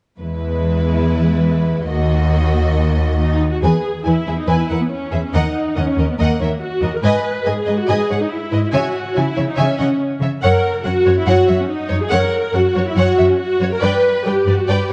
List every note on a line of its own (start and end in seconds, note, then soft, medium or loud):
0.20 1.86 E2 soft
0.20 1.86 G#3 soft
0.20 1.87 E4 soft
0.20 1.87 B4 soft
1.89 3.39 D#2 soft
1.89 3.16 A#3 soft
1.89 3.39 F#4 medium
1.89 3.39 D#5 soft
3.19 3.49 D#4 medium
3.51 3.62 F#4 soft
3.62 3.71 E2 soft
3.62 4.05 G#4 soft
3.62 3.83 B4 soft
3.62 3.83 G#5 soft
4.05 4.14 E2 soft
4.05 4.37 E4 soft
4.05 4.15 B4 soft
4.05 4.13 G#5 soft
4.27 4.35 E2 soft
4.27 4.35 G#4 soft
4.27 4.35 B4 soft
4.27 4.37 E5 soft
4.38 4.48 D#4 soft
4.46 4.56 E2 soft
4.46 4.79 E4 soft
4.46 4.68 B4 soft
4.46 4.68 G#5 soft
4.70 4.78 E2 soft
4.70 4.78 A#4 soft
4.70 4.78 B4 soft
4.70 4.79 F#5 soft
4.80 4.91 B3 soft
4.90 5.22 C#4 soft
5.12 5.21 E2 soft
5.12 5.20 G#4 soft
5.12 5.21 B4 soft
5.12 5.21 E5 soft
5.24 5.34 C#4 soft
5.33 5.42 D#2 soft
5.33 5.76 D#4 soft
5.33 5.54 A#4 soft
5.33 5.54 D#5 soft
5.33 5.54 F#5 soft
5.76 5.85 D#2 soft
5.76 6.08 C#4 medium
5.76 5.84 A#4 soft
5.76 5.84 D#5 soft
5.76 5.85 F#5 soft
5.97 6.05 D#2 soft
5.97 6.07 A#4 soft
5.97 6.07 D#5 soft
6.09 6.19 B3 soft
6.19 6.27 D#2 soft
6.19 6.61 A#3 soft
6.19 6.39 A#4 soft
6.19 6.39 D#5 soft
6.19 6.40 F#5 soft
6.40 6.48 D#2 soft
6.40 6.49 A#4 soft
6.40 6.48 C#5 soft
6.40 6.50 E5 soft
6.61 6.92 F#4 soft
6.83 6.91 D#2 soft
6.83 6.91 A#4 soft
6.83 6.91 D#5 soft
6.93 7.04 A#4 soft
7.02 7.12 G#2 soft
7.02 7.45 B4 medium
7.02 7.24 B4 soft
7.02 7.24 D#5 medium
7.02 7.23 G#5 soft
7.45 7.54 G#2 soft
7.45 7.78 G#4 medium
7.45 7.54 B4 soft
7.45 7.53 D#5 soft
7.45 7.53 G#5 soft
7.67 7.76 G#2 soft
7.67 7.76 B4 soft
7.67 7.75 D#5 soft
7.77 7.89 F#4 soft
7.87 7.97 G#2 soft
7.87 8.20 G#4 medium
7.87 8.08 B4 soft
7.87 8.08 D#5 soft
7.87 8.09 G#5 soft
8.09 8.19 G#2 soft
8.09 8.17 B4 soft
8.09 8.17 C#5 soft
8.09 8.18 F#5 soft
8.20 8.31 D#4 soft
8.30 8.62 E4 soft
8.52 8.61 G#2 soft
8.52 8.60 B4 soft
8.52 8.60 D#5 soft
8.63 8.68 E4 soft
8.73 8.82 C#3 soft
8.73 9.14 F#4 medium
8.73 8.93 C#5 soft
8.73 8.93 E5 medium
8.73 8.93 G#5 medium
9.16 9.24 C#3 soft
9.16 9.48 E4 medium
9.16 9.24 C#5 soft
9.16 9.24 E5 soft
9.16 9.25 G#5 soft
9.37 9.46 C#3 soft
9.37 9.45 C#5 soft
9.37 9.45 E5 soft
9.48 9.58 D#4 soft
9.57 9.67 C#3 medium
9.57 10.01 C#4 medium
9.57 9.77 C#5 soft
9.57 9.77 E5 medium
9.57 9.78 G#5 soft
9.79 9.87 C#3 soft
9.79 9.87 C#5 soft
9.79 9.88 D#5 soft
9.79 9.87 F#5 soft
10.21 10.29 C#3 soft
10.21 10.31 C#5 soft
10.21 10.30 E5 soft
10.43 10.51 F#2 medium
10.43 10.82 A#4 medium
10.43 10.62 C#5 medium
10.43 10.62 F#5 medium
10.85 10.93 F#2 soft
10.85 11.16 F#4 medium
10.85 10.94 C#5 soft
10.85 10.93 F#5 soft
10.85 10.94 F#5 soft
11.06 11.15 F#2 soft
11.06 11.14 C#5 soft
11.18 11.28 E4 medium
11.27 11.35 F#2 medium
11.27 11.59 F#4 medium
11.27 11.47 C#5 medium
11.27 11.46 F#5 medium
11.27 11.47 F#5 soft
11.47 11.56 F#2 soft
11.47 11.57 C#5 soft
11.47 11.55 E5 soft
11.47 11.57 E5 soft
11.60 11.70 C#4 medium
11.70 12.01 D#4 medium
11.89 11.99 F#2 soft
11.89 11.97 C#5 soft
11.89 11.98 C#5 soft
12.02 12.12 G#4 medium
12.10 12.20 F#2 medium
12.10 12.55 A#4 medium
12.10 12.32 C#5 medium
12.10 12.30 F#5 medium
12.10 12.32 F#5 medium
12.53 12.62 F#2 soft
12.53 12.87 F#4 medium
12.53 12.63 C#5 soft
12.53 12.61 F#5 soft
12.53 12.62 F#5 soft
12.76 12.84 F#2 soft
12.76 12.84 C#5 soft
12.76 12.85 C#5 soft
12.88 12.98 E4 medium
12.97 13.05 F#2 medium
12.97 13.30 F#4 medium
12.97 13.17 C#5 medium
12.97 13.17 F#5 medium
13.18 13.26 F#2 soft
13.18 13.26 C#5 soft
13.18 13.26 E5 soft
13.29 13.40 C#4 medium
13.39 13.71 F#4 medium
13.60 13.68 F#2 soft
13.60 13.69 C#5 soft
13.60 13.70 C#5 soft
13.72 13.83 A#4 medium
13.82 13.90 G2 medium
13.82 14.02 B4 medium
13.82 14.25 B4 medium
13.82 14.02 D5 medium
13.82 14.03 G5 soft
14.25 14.33 G2 soft
14.25 14.57 G4 medium
14.25 14.34 B4 soft
14.25 14.33 D5 soft
14.25 14.34 G5 soft
14.46 14.54 G2 soft
14.46 14.56 B4 soft
14.46 14.55 D5 soft
14.57 14.68 F#4 soft
14.67 14.76 G2 soft
14.67 14.93 G4 medium
14.67 14.89 B4 soft
14.67 14.88 D5 soft
14.67 14.88 G5 soft
14.90 14.93 G2 soft